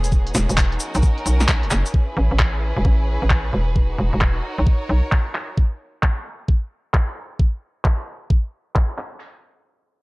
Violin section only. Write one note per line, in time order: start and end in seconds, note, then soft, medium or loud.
0.00 0.78 B3 medium
0.00 0.10 E4 medium
0.00 0.78 G#4 medium
0.12 1.92 D#4 medium
0.12 1.92 F#4 medium
0.80 1.93 C#4 medium
0.80 1.93 A#4 medium
1.94 3.74 C#4 medium
1.94 3.74 E4 medium
1.94 4.41 G#4 medium
1.94 4.41 B4 medium
3.76 5.56 D#4 medium
3.76 5.56 F#4 medium
4.44 5.56 A#4 medium
4.44 5.56 C#5 medium